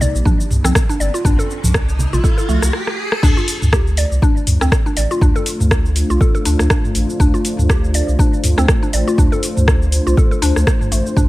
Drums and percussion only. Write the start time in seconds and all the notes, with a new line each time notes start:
0.01 low conga, cabasa
0.16 cabasa
0.26 kick, high conga, cabasa
0.40 cabasa
0.51 mid tom, cabasa
0.64 cross-stick, high conga, cabasa
0.75 kick, cross-stick, cabasa
0.90 cabasa
1.01 cabasa
1.15 cabasa
1.25 kick, mid tom, cabasa
1.40 cabasa
1.50 cabasa
1.64 mid tom, high conga, cabasa
1.74 kick, cross-stick, cabasa
1.89 cabasa
1.99 low conga, cabasa
2.13 low conga, cabasa
2.24 kick, cabasa
2.38 cabasa
2.49 high conga, cabasa
2.62 cross-stick, cabasa
2.73 cross-stick
2.87 cross-stick
3.12 cross-stick
3.23 kick, mid tom, crash, cabasa
3.38 cabasa
3.48 open hi-hat, cabasa
3.62 mid tom, cabasa
3.73 kick, cross-stick, cabasa
3.87 cabasa
3.97 open hi-hat, cabasa
4.12 cabasa
4.22 kick, cabasa
4.37 cabasa
4.47 mid tom, open hi-hat, cabasa
4.61 cross-stick, cabasa
4.72 kick, cross-stick, cabasa
4.86 cabasa
4.97 open hi-hat, cabasa
5.11 cabasa
5.21 kick, mid tom, cabasa
5.36 cabasa
5.46 open hi-hat, cabasa
5.60 mid tom, cabasa
5.71 kick, cross-stick, cabasa
5.86 cabasa
5.96 open hi-hat, cabasa
6.10 cabasa
6.21 kick, cabasa
6.35 cabasa
6.45 open hi-hat, cabasa
6.59 cross-stick, cabasa
6.70 kick, cross-stick, cabasa
6.84 mid tom, cabasa
6.95 open hi-hat, cabasa
7.10 cabasa
7.20 kick, mid tom, cabasa
7.35 cabasa
7.45 open hi-hat, cabasa
7.59 mid tom, cabasa
7.69 kick, cross-stick, cabasa
7.84 cabasa
7.94 open hi-hat, cabasa
8.09 cabasa
8.19 kick, cabasa
8.34 cabasa
8.44 mid tom, open hi-hat, cabasa
8.58 cross-stick, cabasa
8.68 kick, cross-stick, cabasa
8.83 cabasa
8.93 open hi-hat, cabasa
9.08 cabasa
9.18 kick, mid tom, cabasa
9.33 cabasa
9.43 open hi-hat, cabasa
9.57 mid tom, cabasa
9.68 kick, cross-stick, cabasa
9.82 cabasa
9.92 open hi-hat, cabasa
10.07 cabasa
10.17 kick, cabasa
10.32 cabasa
10.42 open hi-hat, cabasa
10.56 cross-stick, cabasa
10.67 kick, cross-stick, cabasa
10.81 mid tom, cabasa
10.92 open hi-hat, cabasa
11.07 cabasa
11.17 kick, mid tom, cabasa